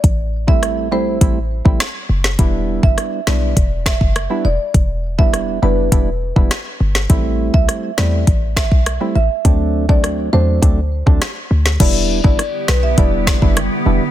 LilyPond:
<<
  \new Staff \with { instrumentName = "Marimba" } { \time 4/4 \key e \minor \tempo 4 = 102 r8. e''8 r16 c''8 r2 | r8. e''8 r16 d''8 r8 e''16 r8. d''16 r16 | r8. e''8 r16 b'8 r2 | r8. e''8 r16 d''8 r8 e''16 r8. e''16 r16 |
r8. d''8 r16 c''8 r2 | d''8 r16 d''16 r8 b'16 e''16 d''8. r4 r16 | }
  \new Staff \with { instrumentName = "Synth stab" } { \time 4/4 \key e \minor r8. <g a c' e'>8. <g a c' e'>8 <g a c' e'>16 r8 <g a c' e'>16 r4 | <g b d' e'>4. <g b d' e'>8 r4 r16 <g b d' e'>16 r8 | r8. <g b d' e'>8. <g b d' e'>8 <g b d' e'>16 r8 <g b d' e'>16 r4 | <g a c' e'>4. <g a c' e'>8 r4 r16 <g a c' e'>16 r8 |
<fis a c' d'>8. <fis a c' d'>8. <fis a c' d'>8 <fis a c' d'>16 r8 <fis a c' d'>16 r4 | <g b d' e'>8. <g b d' e'>16 r4 <g b d' e'>8. <g b d' e'>16 r8 <g b d' e'>16 r16 | }
  \new Staff \with { instrumentName = "Ambient pad" } { \time 4/4 \key e \minor r1 | r1 | r1 | r1 |
r1 | <d g b e' g'>1 | }
  \new Staff \with { instrumentName = "808-style bass" } { \clef bass \time 4/4 \key e \minor a,,4. b,,8 a,,8. a,,16 r8 fis,,8 | e,,8. g,,16 r8 b,,8 e,,8. fis,,8 r16 e,,16 r16 | e,,4. fis,,8 e,,8. e,,16 r8 g,,8 | a,,8. c,16 r8 e,8 a,,8. b,,8 r16 a,,16 r16 |
d,4. e,8 d,8. d,16 r8 d,8 | e,,8. g,,16 r8 b,,8 e,,8. fis,,8 r16 e,,16 r16 | }
  \new DrumStaff \with { instrumentName = "Drums" } \drummode { \time 4/4 <hh bd>8. bd16 <hh ss>4 <hh bd>8. bd16 <hh ss sn>8. sn16 | <hh bd>8. bd16 <hh ss>8 sn8 <hh bd>8 <bd sn>16 bd16 <hh ss>4 | <hh bd>8. bd16 <hh ss>4 <hh bd>8. bd16 <hh ss sn>8. sn16 | <hh bd>8. bd16 <hh ss>8 sn8 <hh bd>8 <bd sn>16 bd16 <hh ss>4 |
<hh bd>8. bd16 <hh ss>4 <hh bd>8. bd16 <hh ss sn>8. sn16 | <cymc hh bd>8. bd16 <hh ss>8 sn8 <hh bd>8 <bd sn>16 bd16 <hh ss>4 | }
>>